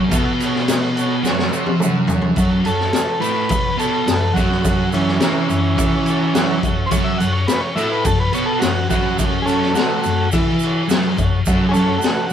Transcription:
Already playing: distorted electric guitar F#2 F#3
0.09 distorted electric guitar B2 B3, kick, crash, shaker
0.13 transistor combo organ F#4 A4 E5
0.40 transistor combo organ F#4 A4, crash, shaker
0.44 transistor combo organ C#5
0.55 snare
0.68 transistor combo organ F#4 A4 C#5, snare, crash, shaker
0.96 transistor combo organ F#4 A4 C#5, crash, shaker
1.23 distorted electric guitar F#2 F#3, transistor combo organ F#4 A4 C#5, snare, shaker
1.39 snare
1.51 distorted electric guitar C3 C4, transistor combo organ F#4 A4, shaker
1.56 transistor combo organ C#5
1.66 high tom
1.80 distorted electric guitar F#2 F#3, transistor combo organ F#4 A4 E5, mid tom, shaker
2.07 transistor combo organ F#4 A4, floor tom, shaker
2.12 transistor combo organ C#5
2.22 floor tom
2.36 distorted electric guitar F#2 F#3, transistor combo organ F#4 A4, kick, crash, shaker
2.40 transistor combo organ C#5
2.64 distorted electric guitar F#2, transistor combo organ F#4 A4 C#5, crash, shaker
2.80 snare
2.93 transistor combo organ F#4, snare, crash, shaker
2.98 transistor combo organ A4 C#5
3.20 distorted electric guitar A2 A3, transistor combo organ F#4 A4 B4 E5, crash, shaker
3.49 distorted electric guitar F#2, transistor combo organ F#4 A4 C#5, kick, crash, shaker
3.77 distorted electric guitar B2 B3, transistor combo organ F#4 A4 C#5, crash, shaker
4.06 distorted electric guitar F#2, transistor combo organ F#4 A4 B4, snare, crash, shaker
4.33 distorted electric guitar F#2 F#3, transistor combo organ F#4 A4 C#5, kick, crash, shaker
4.51 snare
4.61 transistor combo organ F#4 A4 C#5, kick, shaker
4.65 crash
4.91 transistor combo organ E3 C#4 F#4 A4 C#5, crash, shaker
5.08 snare
5.20 distorted electric guitar C3 C4, transistor combo organ F#4 A4 C#5, snare, crash, shaker
5.49 distorted electric guitar F#2, transistor combo organ F#4 A4 C#5, crash, shaker
5.77 distorted electric guitar E3 E4, transistor combo organ F#4 A4 C#5, kick, crash, shaker
6.06 transistor combo organ F#4 C#5 A5, crash, shaker
6.10 transistor combo organ A4
6.33 distorted electric guitar F#2 F#3, transistor combo organ F#4 A4 C#5 F#5, snare, crash, shaker
6.62 distorted electric guitar F#2, transistor combo organ F#4 E5, kick, crash, shaker
6.67 transistor combo organ A4 C#5
6.86 transistor combo organ C5
6.91 distorted electric guitar F#2 F#3, transistor combo organ F#4 A4 C#5, kick, crash, shaker
7.04 transistor combo organ E5
7.18 distorted electric guitar F#2, transistor combo organ F#4 A4 C#5 F#5, crash, shaker
7.33 transistor combo organ C#5
7.47 transistor combo organ F#4 A4 B4 C#5, snare, crash, shaker
7.60 transistor combo organ C#5
7.75 distorted electric guitar A2 A3, transistor combo organ F#4 A4 E5, crash, shaker
7.80 transistor combo organ B4
7.92 transistor combo organ B4
8.03 distorted electric guitar F#2, transistor combo organ F#4 A4 C#5, kick, crash, shaker
8.20 transistor combo organ B4
8.31 distorted electric guitar B2 B3, transistor combo organ F#4 A4 B4 C#5, crash, shaker
8.46 transistor combo organ A4
8.57 transistor combo organ F#4 A4 C#5
8.61 distorted electric guitar F#2, snare, crash, shaker
8.88 distorted electric guitar F#2 F#3, transistor combo organ F#4 A4 B4, kick, crash, shaker
9.17 transistor combo organ F#4 A4 C#5, kick, crash, shaker
9.42 transistor combo organ C#4 G#4 A4
9.47 transistor combo organ F#4 A4 C#5, crash, shaker
9.63 snare
9.73 distorted electric guitar C3 C4, transistor combo organ A3 F#4, snare, crash, shaker
9.78 transistor combo organ A4 E5
10.01 distorted electric guitar F#2, transistor combo organ A3 F#4, shaker
10.06 transistor combo organ F#4 A4 C#5, crash
10.32 distorted electric guitar E3 E4, kick, crash, shaker
10.36 transistor combo organ F#4 A4 B4
10.60 crash, shaker
10.64 transistor combo organ F#4 A4 C#5
10.88 distorted electric guitar F#2 F#3, transistor combo organ F#4 A4, snare, crash, shaker
10.92 transistor combo organ E5
11.17 distorted electric guitar F#2, kick, crash, shaker
11.21 transistor combo organ F#4 A4 C#5
11.46 distorted electric guitar F#2 F#3, transistor combo organ F#4 A4 E5, kick, crash, shaker
11.69 transistor combo organ C#4 G#4
11.73 distorted electric guitar F#2, transistor combo organ A4, crash, shaker
11.79 transistor combo organ F#4 A4 C#5
11.98 transistor combo organ A3 F#4, shaker
12.03 transistor combo organ F#4 A4 B4, snare, crash
12.26 transistor combo organ F#4

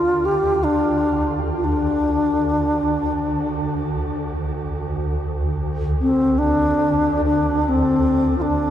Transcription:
Already playing: synth drone D2, alto flute F4, crotales A6
0.25 alto flute G4
0.64 alto flute D4
1.56 alto flute F4
1.65 alto flute D4
6.01 alto flute C4
6.39 alto flute D4
7.25 alto flute D4
7.69 alto flute C4
8.38 alto flute F4
8.42 alto flute D4

